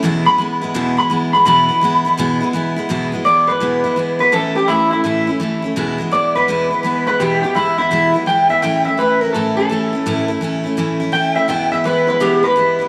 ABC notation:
X:1
M:4/4
L:1/8
Q:"Swing" 1/4=168
K:E
V:1 name="Clean electric guitar"
z b z3 b z b | b6 z2 | z2 =d B4 B | A =G E E2 z3 |
z2 =d B4 B | =G G E E2 z =g e | =g e B ^A =A A3- | A z4 z =g e |
=g e B B =G B3 |]
V:2 name="Steel-string acoustic guitar"
[E,,B,,E,G,B,E] [G,B,E] [E,G,B,E] [E,G,B,E] [E,,B,,E,G,B,E] [G,B,E] [E,G,B,E] [E,G,B,E] | [E,,B,,E,G,B,E] [E,G,B,E] [E,G,B,E] [E,G,B,E] [E,,B,,E,G,B,E] [E,G,B,E] [E,G,B,E] [E,G,B,E] | [E,,B,,E,G,B,E] [E,G,B,E] [E,G,B,E] [E,G,B,E] [E,,B,,E,G,B,E] [E,G,B,E] [E,G,B,E] [E,G,B,E] | [A,,E,A,CE] [A,CE] [E,A,CE] [A,CE] [A,,E,A,CE] [A,CE] [E,A,CE] [A,CE] |
[E,,B,,E,G,B,E] [E,G,B,E] [E,G,B,E] [E,G,B,E] [E,,B,,E,G,B,E] [E,G,B,E] [E,G,B,E] [E,G,B,E] | [E,,B,,E,G,B,E] [E,G,B,E] [E,G,B,E] [E,G,B,E] [E,,B,,E,G,B,E] [E,G,B,E] [E,G,B,E] [E,G,B,E] | [A,,E,A,CE] [A,CE] [E,A,CE] [A,CE] [A,,E,A,CE] [A,CE] [E,A,CE] [A,CE] | [A,,E,A,CE] [A,CE] [E,A,CE] [A,CE] [A,,E,A,CE] [A,CE] [E,A,CE] [A,CE] |
[E,,B,,E,G,B,E] [E,G,B,E] [E,G,B,E] [E,G,B,E] [E,,B,,E,G,B,E] [E,B,E] [E,G,B,E] [E,G,B,E] |]